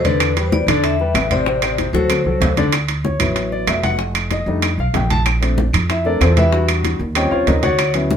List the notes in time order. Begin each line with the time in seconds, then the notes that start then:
Already playing: E2
0.05 D3 D4 B4 D5, high conga, high timbale
0.20 high bongo, high timbale, claves
0.36 G3 G4 B4, high bongo, high conga, high timbale
0.46 C5
0.52 D5, high bongo, high conga
0.67 E2 D3 D4 D5, high bongo, high conga, low conga, high timbale, claves
0.84 E5, high bongo, high conga, high timbale
0.99 G3 G4 B4, high bongo, high conga
1.14 A1, high bongo, low bongo, high conga, high timbale, low timbale, claves
1.31 C3 C4 C5 D5, high conga, high timbale
1.46 C3 C4 C5, high bongo, high conga
1.62 C3 C4 C5, high bongo, high conga, high timbale, claves
1.78 high bongo, high conga, high timbale
1.93 D2 F#3 F#4 A4 C5, high bongo, high conga
2.10 low bongo, high conga, high timbale, claves
2.25 C2 F#3 F#4 A4, high conga
2.40 D2, low bongo, high conga, high timbale, low timbale
2.57 D3 D4 D5, low bongo, high conga, high timbale
2.73 high bongo, high timbale, claves
2.88 high bongo, high conga, high timbale
3.04 C#5, high bongo, high conga
3.19 A1 F#3 B3 E4, high bongo, high conga, low conga, high timbale, claves
3.36 high bongo, high conga, high timbale
3.52 D5, high bongo, high conga
3.67 F1 E5, high bongo, low bongo, high conga, high timbale, low timbale, claves
3.83 F#5, high conga, high timbale
3.99 high bongo, high conga
4.15 high bongo, high conga, high timbale, claves
4.31 D#5, high bongo, high conga, high timbale
4.46 F2 G3 A3 D4 D#4, high bongo, high conga
4.62 high bongo, high conga, high timbale, claves
4.78 B1 F5, high bongo, high conga
4.94 A#1 G5, high bongo, low bongo, high conga, high timbale, low timbale
5.10 A5, high conga, high timbale
5.26 high bongo, high conga, high timbale, claves
5.41 A3 C4 D4, high bongo, high conga, high timbale
5.58 high bongo, high conga
5.73 F2, high bongo, high conga, low conga, high timbale, claves
5.90 E4 E5, high bongo, high conga, high timbale
6.05 A3 C4 D4 A4 A#4 D5, high bongo, high conga
6.21 E2 C4 F4 A4 C5, high bongo, low bongo, high timbale, low timbale, claves
6.37 E4 G4 B4 E5, high conga, high timbale
6.52 G3 D4 F#4, high bongo
6.68 high bongo, high conga, high timbale, claves
6.84 high bongo, high conga, high timbale
6.99 D#2, high bongo, high conga
7.15 G3 C4 C#4 F4 G4 C#5 D#5 G5, high bongo, high conga, high timbale, claves
7.31 D#2 F4 C5 C#5 F5, high bongo, high conga
7.47 D2 D#4 A#4 C5 D#5, high bongo, low bongo, high conga, high timbale, low timbale
7.63 F#4 C#5 D5 F#5, high conga, high timbale
7.79 high bongo, high conga, high timbale, claves
7.94 F#3 B3 C#4 E4, high bongo, high conga, high timbale
8.10 high bongo, high conga